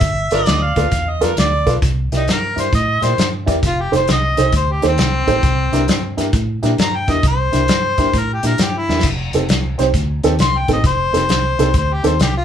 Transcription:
Already playing: E5
0.01 G1, kick, snare, closed hi-hat
0.31 G1 F4 A4 A#4 B4 D5, snare, closed hi-hat
0.46 D2 D5 D#5, snare, closed hi-hat
0.63 F5
0.76 D2 F4 A4 B4 D5, kick, snare, closed hi-hat
0.91 E2, kick, snare, closed hi-hat
1.10 D#5
1.21 F2 F4 A4 A#4 B4 D5, snare, closed hi-hat
1.37 D2 D5, snare, closed hi-hat
1.66 B1 F4 A4 B4 D5, kick, snare, closed hi-hat
1.82 C2, kick, snare, closed hi-hat
2.12 C2 D#4 E4 G4 A#4 D5, snare, closed hi-hat
2.28 G2 A#4, snare, closed hi-hat
2.56 G2 E4 G4 A#4 D5, snare, closed hi-hat
2.60 C5
2.73 A2 D#5, kick, snare, closed hi-hat
3.02 A#2 E4 G4 A#4 C5 D5, snare, closed hi-hat
3.18 G2, snare, closed hi-hat
3.46 E2 E4 G4 A#4 D5, kick, snare, closed hi-hat
3.63 F1, kick, snare, closed hi-hat
3.67 F4
3.81 G4
3.92 F1 D#4 G4 A4 C5, snare, closed hi-hat
3.96 C5
4.08 C2, snare, closed hi-hat
4.12 D#5
4.37 C2 D#4 G4 A4 C5, snare, closed hi-hat
4.52 D2 C5, kick, snare, closed hi-hat
4.72 G4
4.82 D#2 D#4 G4 A4 C5, snare, closed hi-hat
4.88 C4
4.98 C2, snare, closed hi-hat
5.27 A1 D#4 G4 A4 C5, kick, snare, closed hi-hat
5.43 C2, kick, snare, closed hi-hat
5.72 C2 D4 E4 G4 A#4, snare, closed hi-hat
5.88 G2, snare, closed hi-hat
6.17 G2 D4 E4 G4 A#4, snare, closed hi-hat
6.33 A2, kick, snare, closed hi-hat
6.63 A#2 D4 E4 G4 A#4, snare, closed hi-hat
6.78 G2 A#5, snare, closed hi-hat
6.96 G5
7.08 E2 D4 E4 G4 A#4, kick, snare, closed hi-hat
7.12 D#5
7.23 C2, kick, snare, closed hi-hat
7.27 C5
7.52 C2 D4 E4 G4 A#4, snare, closed hi-hat
7.68 G2, snare, closed hi-hat
7.98 G2 D4 E4 G4 A#4, kick, snare, closed hi-hat
8.13 A2, kick, snare, closed hi-hat
8.18 A#4
8.33 G4
8.43 A#2 D4 E4 G4 A#4, snare, closed hi-hat
8.58 G2, snare, closed hi-hat
8.62 G4
8.78 E4
8.89 E2 D4 E4 G4 A#4, snare
8.99 F1, snare, closed hi-hat, crash
9.03 kick, snare
9.33 F1 C4 D#4 G4 A4, snare, closed hi-hat
9.49 C2, snare, closed hi-hat
9.78 C2 C4 D#4 G4 C5, snare, closed hi-hat
9.94 D2, kick, snare, closed hi-hat
10.23 D#2 C4 D#4 G4 A4, snare, closed hi-hat
10.39 C2 C6, snare, closed hi-hat
10.58 G5
10.68 A1 C4 D#4 G4 A4, kick, snare, closed hi-hat
10.73 D#5
10.84 F1 C5, kick, snare, closed hi-hat
11.13 F1 C4 D#4 G4 A4, snare, closed hi-hat
11.29 C2, snare, closed hi-hat
11.59 C2 C4 D#4 G4 A4, snare, closed hi-hat
11.74 D2 C5, kick, snare, closed hi-hat
11.93 G4
12.03 D#2 C4 D#4 G4 A4 C5, snare, closed hi-hat
12.20 C2 G4, snare, closed hi-hat
12.37 F4

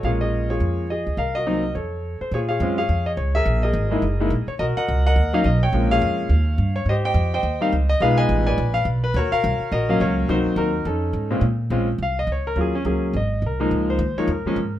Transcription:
0.03 A#1 G#3 A#3 C#4 F4 G#4 C#5 F5
0.21 G#4 D#5
0.50 F4 G#4 C#5
0.60 F2
0.90 G#4 D#5
1.07 C#2
1.17 C2 A#4 F5
1.35 F#4 A#4 D#5
1.46 F#3 A#3 C4 D#4
1.75 F2 A4 C#5
2.21 C5, muted upright bass stroke
2.31 A#2 G#4 C#5
2.35 F4
2.49 G#4 C#5 F5
2.60 F#2 G#3 C4 C#4 F4
2.78 G#4 C#5 F5
2.89 F2
3.06 D#5
3.17 C#2 C#5
3.35 G#4 A#4 E5
3.45 A#1
3.63 G#4 A#4 D#5
3.73 G#1
3.91 G#3 A#3 D#4 E4
4.02 F#1
4.20 G#3 A#3 D#4 E4
4.30 A#1
4.47 C#5, muted upright bass stroke
4.59 B1 F#4 A#4 D#5
4.77 A#4 D#5 F#5, muted upright bass stroke
4.88 C#2
5.06 A#4 D#5 F#5
5.16 D#2
5.33 F#3 A#3 C#4 D#4 F5
5.44 B1 D#5
5.63 C#5 G5
5.73 A#1 G#3 A#3 C#4 F4
5.91 G#4 C#5 F5
6.02 F2
6.29 D#2
6.58 G2
6.76 C#5
6.86 G#2 G4 D#5
6.90 C5
7.05 C5 D#5 G5
7.14 F2
7.34 C5 D#5 G5
7.43 D#2
7.61 G3 A#3 C4 D#4 F5
7.72 C#2
7.89 D#5
8.00 B1 G#3 B3 D#4 F4 G#4 B4 F5
8.18 B4 D#5 G#5
8.29 A1
8.47 B4 D5 G#5
8.58 A#1
8.74 F5
8.85 B1
9.04 B4
9.14 D#2 F#4 A#4 C#5
9.32 A#4 C#5 F5, muted upright bass stroke
9.44 C2
9.60 muted upright bass stroke
9.72 A#1 F#4 A#4 D#5
9.89 F#3 A#3 C#4 F5
10.00 C#2 F#4 A#4 C#5
10.29 C2 F#3 A#3 C4 D#4 F#4 C5
10.45 muted upright bass stroke
10.56 D#2 D#4 F#4 A#4
10.85 F2 C#4 D#4 A4
11.13 G#2
11.31 A#2 G#3 C4 C#4 F4
11.41 A#2
11.70 A#1 G#3 C4 C#4 F4
11.98 C2
12.03 F5
12.19 D#5
12.27 C#2
12.32 C#5
12.47 A#4
12.56 D#2 F#3 A#3 C#4 F4
12.61 G#4
12.75 C#4
12.85 C#2 F#3 A#3 C#4 G#4
13.13 G#1 D#5
13.42 C2
13.46 A#4
13.60 F3 G#3 A#3 D#4
13.71 C#2
13.90 C5
13.99 D#2
14.17 F3 G#3 A#3 D#4 C#5, muted upright bass stroke
14.28 F2
14.32 A#4
14.45 F3 G#3 A#3 C#4, muted upright bass stroke
14.56 G#2

